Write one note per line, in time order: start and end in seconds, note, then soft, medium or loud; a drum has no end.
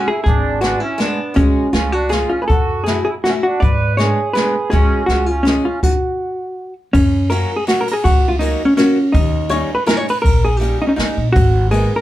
0.08 0.24 E4 medium
0.08 0.22 G#4 medium
0.24 0.74 G#1 medium
0.24 0.60 D4 medium
0.24 0.62 G#4 medium
0.24 kick medium
0.24 closed hi-hat soft
0.61 0.81 G#3 medium
0.61 0.81 B3 medium
0.61 0.82 D4 medium
0.61 0.81 D4 medium
0.61 0.80 F#4 medium
0.61 0.82 G#4 medium
0.61 snare medium
0.61 closed hi-hat soft
0.80 0.99 C#4 medium
0.80 1.00 E4 medium
0.98 1.18 G#3 medium
0.98 1.18 B3 medium
0.98 1.37 B3 medium
0.98 1.19 D4 soft
0.98 1.37 D4 medium
0.98 1.19 G#4 medium
0.98 snare medium
0.98 closed hi-hat soft
1.34 1.61 C#2 medium
1.34 1.66 G#3 medium
1.34 1.71 G#3 medium
1.34 1.66 C#4 medium
1.34 1.75 C#4 medium
1.34 1.66 F#4 medium
1.34 1.66 G#4 medium
1.34 kick medium
1.34 closed hi-hat soft
1.73 2.22 C#2 medium
1.73 1.93 G#3 medium
1.73 1.92 C#4 medium
1.73 1.93 C#4 medium
1.73 1.92 F4 medium
1.73 1.94 F4 soft
1.73 1.94 G#4 medium
1.73 snare medium
1.73 closed hi-hat soft
1.92 2.11 D4 medium
1.92 2.11 F#4 medium
2.09 2.30 G#3 medium
2.09 2.30 C#4 soft
2.09 2.29 F4 medium
2.09 2.31 F4 soft
2.09 2.31 G#4 medium
2.09 snare medium
2.09 closed hi-hat soft
2.28 2.40 C#4 medium
2.28 2.42 F4 medium
2.41 2.48 G#4 medium
2.41 2.47 B4 medium
2.48 2.98 F#2 medium
2.48 2.83 F#4 medium
2.48 2.87 A4 medium
2.48 kick medium
2.48 closed hi-hat soft
2.84 3.06 A3 medium
2.84 3.06 C#4 medium
2.84 3.04 E4 medium
2.84 3.04 G#4 medium
2.84 snare medium
2.84 closed hi-hat soft
2.88 3.07 E4 soft
2.88 3.07 F#4 medium
3.05 3.14 E4 medium
3.05 3.10 G#4 medium
3.24 3.44 A3 medium
3.24 3.34 C#4 medium
3.24 3.44 C#4 soft
3.24 3.45 E4 medium
3.24 3.29 F#4 medium
3.24 3.45 F#4 medium
3.24 snare medium
3.24 closed hi-hat soft
3.43 3.61 D4 medium
3.43 3.62 F#4 medium
3.60 4.10 G#2 loud
3.60 3.96 B4 medium
3.60 3.97 D5 loud
3.60 kick medium
3.60 closed hi-hat soft
3.97 4.18 G#3 medium
3.97 4.18 B3 soft
3.97 4.19 D4 medium
3.97 4.33 G#4 medium
3.97 4.19 G#4 medium
3.97 4.33 C#5 medium
3.97 snare medium
3.97 closed hi-hat soft
4.33 4.55 G#3 medium
4.33 4.55 B3 medium
4.33 4.55 D4 medium
4.33 4.69 G#4 medium
4.33 4.55 G#4 medium
4.33 4.72 B4 medium
4.33 snare soft
4.33 closed hi-hat soft
4.70 4.97 C#2 medium
4.70 5.02 G#3 medium
4.70 5.06 C#4 medium
4.70 5.02 C#4 medium
4.70 5.02 F#4 medium
4.70 5.05 G#4 medium
4.70 5.02 G#4 medium
4.70 kick medium
4.70 closed hi-hat soft
5.06 5.56 C#2 medium
5.06 5.28 G#3 medium
5.06 5.26 C#4 medium
5.06 5.29 C#4 soft
5.06 5.26 F#4 medium
5.06 snare soft
5.06 closed hi-hat soft
5.11 5.29 F4 soft
5.11 5.29 G#4 medium
5.26 5.45 C#4 medium
5.26 5.45 F4 medium
5.43 5.63 G#3 medium
5.43 5.65 G#3 medium
5.43 5.64 C#4 medium
5.43 5.65 C#4 medium
5.43 5.65 F4 soft
5.43 snare medium
5.43 closed hi-hat soft
5.48 5.66 G#4 medium
5.63 5.80 C#4 medium
5.63 5.81 F4 medium
5.83 6.73 F#4 medium
5.83 kick medium
5.83 crash medium
6.93 7.43 F#2 loud
6.93 7.32 C#4 medium
6.93 kick medium
6.93 ride soft
7.30 7.50 F#3 medium
7.30 7.50 A#3 medium
7.30 7.51 C#4 medium
7.30 7.51 F#4 medium
7.30 7.56 A#4 medium
7.30 ride soft
7.56 7.68 G#4 medium
7.67 7.87 F#3 medium
7.67 7.87 A#3 soft
7.67 7.87 C#4 medium
7.67 7.81 F#4 medium
7.67 7.88 F#4 medium
7.67 snare medium
7.67 ride soft
7.81 7.90 A#4 medium
7.88 ride soft
7.92 8.05 G#4 medium
7.92 7.94 A#4 medium
8.04 8.52 C#2 medium
8.04 8.29 F#4 loud
8.04 kick medium
8.04 ride soft
8.28 8.39 F4 medium
8.39 8.60 F#3 medium
8.39 8.60 A#3 medium
8.39 8.61 C#4 medium
8.39 8.63 D#4 medium
8.39 8.61 F#4 medium
8.39 ride soft
8.65 8.76 C#4 medium
8.77 8.97 F#3 medium
8.77 8.97 A#3 medium
8.77 9.15 C#4 medium
8.77 8.97 C#4 medium
8.77 8.98 F#4 medium
8.77 snare medium
8.77 ride soft
9.12 9.62 D#2 loud
9.12 9.51 D#4 medium
9.12 kick medium
9.12 ride soft
9.49 9.69 G3 medium
9.49 9.70 A#3 medium
9.49 9.70 C#4 medium
9.49 9.70 D#4 medium
9.49 9.74 C#5 medium
9.49 ride soft
9.75 9.87 B4 medium
9.86 10.06 G3 medium
9.86 10.06 A#3 medium
9.86 10.06 C#4 medium
9.86 10.07 D#4 medium
9.86 9.97 A#4 loud
9.86 snare medium
9.86 ride soft
9.97 10.10 C#5 medium
10.08 10.21 B4 loud
10.08 ride soft
10.22 10.72 A#1 medium
10.22 10.48 A#4 loud
10.22 kick medium
10.22 ride soft
10.45 10.57 G#4 medium
10.57 10.80 G3 medium
10.57 10.80 A#3 medium
10.57 10.81 G4 medium
10.62 10.80 C#4 soft
10.62 10.81 D#4 medium
10.62 ride soft
10.82 10.87 D#4 medium
10.87 10.91 C#4 medium
10.87 10.95 D#4 medium
10.96 11.16 C#3 medium
10.96 11.17 G3 medium
10.96 11.17 A#3 soft
10.96 11.17 C#4 soft
10.96 11.32 D#4 medium
10.96 11.17 D#4 soft
10.96 snare medium
10.96 ride soft
11.17 11.33 A#2 medium
11.32 11.84 G#1 loud
11.32 11.71 F#4 loud
11.32 kick medium
11.32 ride soft
11.71 11.91 G#3 medium
11.71 11.92 A#3 soft
11.71 11.92 B3 soft
11.71 11.92 D#4 medium
11.71 11.97 G#4 medium
11.71 ride soft
11.96 12.01 A#4 medium